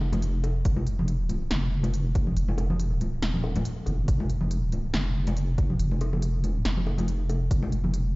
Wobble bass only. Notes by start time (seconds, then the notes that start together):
Already playing: F1
0.65 F1
1.51 F1
2.37 F1
3.22 D#1
3.87 F1
4.08 F1
4.94 F1
5.79 F1
6.38 E1
6.65 F1
7.51 F1
8.10 E1